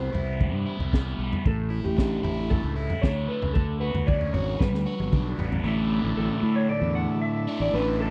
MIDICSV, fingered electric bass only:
0, 0, Header, 1, 2, 480
1, 0, Start_track
1, 0, Tempo, 524017
1, 1334, Time_signature, 4, 2, 24, 8
1, 7422, End_track
2, 0, Start_track
2, 0, Title_t, "Fingered electric bass"
2, 0, Program_c, 0, 33
2, 125, Note_on_c, 0, 36, 73
2, 485, Note_off_c, 0, 36, 0
2, 485, Note_on_c, 0, 43, 79
2, 595, Note_off_c, 0, 43, 0
2, 723, Note_on_c, 0, 36, 67
2, 1051, Note_off_c, 0, 36, 0
2, 1085, Note_on_c, 0, 35, 75
2, 1196, Note_off_c, 0, 35, 0
2, 1332, Note_on_c, 0, 33, 107
2, 1656, Note_off_c, 0, 33, 0
2, 1685, Note_on_c, 0, 33, 78
2, 2013, Note_off_c, 0, 33, 0
2, 2044, Note_on_c, 0, 33, 76
2, 2372, Note_off_c, 0, 33, 0
2, 2417, Note_on_c, 0, 37, 79
2, 2632, Note_off_c, 0, 37, 0
2, 2776, Note_on_c, 0, 38, 84
2, 2992, Note_off_c, 0, 38, 0
2, 3135, Note_on_c, 0, 37, 70
2, 3244, Note_off_c, 0, 37, 0
2, 3258, Note_on_c, 0, 38, 90
2, 3581, Note_off_c, 0, 38, 0
2, 3611, Note_on_c, 0, 38, 83
2, 3937, Note_off_c, 0, 38, 0
2, 3964, Note_on_c, 0, 32, 79
2, 4186, Note_off_c, 0, 32, 0
2, 4216, Note_on_c, 0, 31, 89
2, 4330, Note_off_c, 0, 31, 0
2, 4330, Note_on_c, 0, 38, 87
2, 4441, Note_off_c, 0, 38, 0
2, 4577, Note_on_c, 0, 31, 74
2, 4685, Note_off_c, 0, 31, 0
2, 4696, Note_on_c, 0, 35, 73
2, 4912, Note_off_c, 0, 35, 0
2, 4929, Note_on_c, 0, 33, 72
2, 5148, Note_off_c, 0, 33, 0
2, 5163, Note_on_c, 0, 33, 101
2, 5491, Note_off_c, 0, 33, 0
2, 5534, Note_on_c, 0, 33, 94
2, 5642, Note_off_c, 0, 33, 0
2, 5646, Note_on_c, 0, 33, 81
2, 5758, Note_off_c, 0, 33, 0
2, 5887, Note_on_c, 0, 45, 78
2, 6105, Note_off_c, 0, 45, 0
2, 6243, Note_on_c, 0, 40, 93
2, 6462, Note_off_c, 0, 40, 0
2, 6962, Note_on_c, 0, 33, 78
2, 7073, Note_off_c, 0, 33, 0
2, 7085, Note_on_c, 0, 33, 107
2, 7408, Note_off_c, 0, 33, 0
2, 7422, End_track
0, 0, End_of_file